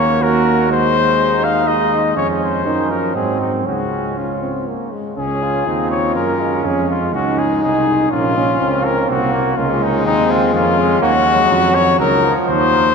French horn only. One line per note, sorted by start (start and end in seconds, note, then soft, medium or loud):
0.00 0.18 A#3 medium
0.22 0.72 A#3 medium
0.70 1.67 G#3 medium
1.67 2.15 G#3 medium
2.16 2.67 G#3 medium
2.66 2.92 D#3 medium
2.90 3.17 F3 medium
3.16 3.65 F#3 medium
3.66 4.16 G#3 medium
4.17 4.43 C#4 medium
4.42 4.69 C4 medium
4.67 4.93 A#3 medium
4.91 5.16 G#3 medium
5.17 5.63 C#4 medium
5.67 6.66 F4 medium
6.65 6.99 C#4 medium
7.14 8.12 D#4 loud
8.10 8.61 C#4 medium
8.60 9.11 C4 medium
9.09 9.56 A#3 medium
9.57 10.99 G#3 loud
11.02 12.65 F#3 loud